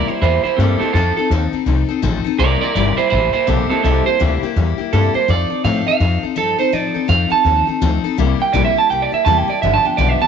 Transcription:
0.08 A#3 E4 G4 C5, muted upright bass stroke
0.22 E2 G3 A#3 E4 G4 C5
0.44 A#3 E4 G4 C5, muted upright bass stroke
0.57 G2 C3 G3 A#3 C4 A4
0.61 E4 G4
0.79 C4 E4 G4 A4, muted upright bass stroke
0.84 A#3
0.93 F2 F3 C4 D#4 F4 A4
1.17 C4 D#4 A4, muted upright bass stroke
1.30 D#2 F3 C4 D#4 A4
1.53 C4 D#4 A4, muted upright bass stroke
1.66 C2 F3 C4 D#4 A4
1.89 C4 D#4 A4, muted upright bass stroke
2.02 A1 F3 C4 D#4 A4
2.24 C4 D#4 A4, muted upright bass stroke
2.39 C2 C3 G3 A#3 E4 G4 A#4 D5
2.61 A#3 E4 G4 A#4 D5, muted upright bass stroke
2.74 G1 C3 G3 A#3 E4 G4 A#4 D5
2.97 A#3 E4 G4 C5, muted upright bass stroke
3.10 A1 G3 A#3 E4 G4 C5
3.33 A#3 E4 G4 C5, muted upright bass stroke
3.47 A#1 C3 G3 A#3 C4 E4 G4 A4
3.70 A#3 C4 E4 G4 A4, muted upright bass stroke
3.83 C2 C3 G3 A#3 C4 E4 G4 A4
4.06 A#3 E4 G4 C5
4.20 D2 C3 G3 A#3 E4 G4
4.42 A#3 E4 G4, muted upright bass stroke
4.56 E2 G3 A#3 E4 G4
4.78 A#3 E4 G4, muted upright bass stroke
4.93 G2 C3 G3 A#3 E4 G4 A4
5.14 A#3 E4 G4 C5, muted upright bass stroke
5.28 F2 F3 C4 D#4 A4 D5
5.50 C4 D#4 A4, muted upright bass stroke
5.64 A2 F3 C4 D#4 A4 F5
5.87 C4 D#4 A4 F5, muted upright bass stroke
6.00 F2 F3 C4 D#4 A4
6.23 C4 D#4 A4, muted upright bass stroke
6.36 G2 F3 C4 D#4 A4
6.58 C4 D#4 A4 C5, muted upright bass stroke
6.72 A2 F3 C4 D#4 A4 D5
6.94 C4 D#4 A4, muted upright bass stroke
7.08 F2 F3 C4 D#4 A4 F5
7.30 C4 D#4 A4 A5, muted upright bass stroke
7.45 D#2 F3 C4 D#4 A4
7.67 C4 D#4 A4, muted upright bass stroke
7.81 D2 F3 C4 D#4 A4
8.04 C4 D#4 A4, muted upright bass stroke
8.18 C2 C3 G3 A#3 E4 G4
8.39 A#3 E4 G4 G5, muted upright bass stroke
8.53 A#1 C3 G3 A#3 E4 G4 D5
8.65 E5
8.76 A#3 E4 G4 A5, muted upright bass stroke
8.90 C2 G3 A#3 E4 G4 G5
9.02 D5
9.12 A#3 E4 G4 E5
9.25 E2 C3 G3 A#3 E4 G4 A5
9.38 G5
9.48 A#3 E4 G4 D5, muted upright bass stroke
9.62 G1 G2 D3 F3 B3 D4 G4 E5
9.74 A5
9.84 F3 B3 D4 G4 G5, muted upright bass stroke
9.97 B1 G2 D3 F3 B3 D4 G4 D5
10.09 E5
10.20 F3 B3 D4 G4 A5, muted upright bass stroke

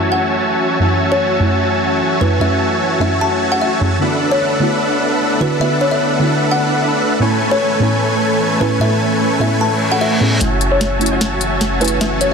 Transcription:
Already playing: F#2 E3 A3 C#4 E4 F#4 C#5 E5 G#5 A5, downlifter
0.12 F#5
0.79 F#2 A3 C#4 E4 F#4 C#5 E5 G#5 A5
1.12 C#5
1.39 F#2 A3 C#4 E4
2.20 F#2 A3 C#4 E4 G#4 B4
2.39 F#2 A3 C#4 E4 E5
2.99 F#2 A3 C#4 E4 E5
3.21 A5
3.52 F#5
3.61 E5
3.80 F#2 A3 C#4 E4 G#4
3.99 D3 A3 B3 D4 E4 A4 B4 E5 F#5
4.03 F#4
4.31 C#5
4.59 D3 A3 B3 E4
4.63 F#4
5.40 D3 A3 B3 E4 F#4 B4
5.59 D3 A3 B3 E4 F#4 E5
5.81 C#5
5.91 E5
6.19 D3 A3 B3 E4 F#4
6.51 F#5
7.19 A2 E3 A3 B3 C#4 E4 A4 B4 C#5 G#5
7.23 G#5
7.51 C#5
7.79 A2 B3 C#4 E4
7.83 G#5
8.60 A2 B3 C#4 E4 G#4 B4
8.79 A2 B3 C#4 E4 E5
8.83 G#5
9.39 A2 B3 C#4 E4 E5 G#5
9.61 A5, reverse cymbal
9.92 F#5
10.01 E5
10.20 A2 B3 C#4 E4 G#4
10.39 F#1 E3 A3 C#4 E4 F#4 C#5 E5 G#5 A5, snare, closed hi-hat, riser
10.61 closed hi-hat
10.72 C#5
10.81 snare, closed hi-hat
10.99 A3 C#4 E4, closed hi-hat
11.06 closed hi-hat
11.11 F#4 C#5 E5 G#5 A5
11.21 snare, closed hi-hat
11.41 closed hi-hat
11.61 snare, closed hi-hat
11.80 A3 C#4 E4 G#4 B4, closed hi-hat
11.85 closed hi-hat
11.88 closed hi-hat
11.99 A3 C#4 F#4 C#5 E5 G#5 A5, snare, closed hi-hat
12.21 C#5, closed hi-hat

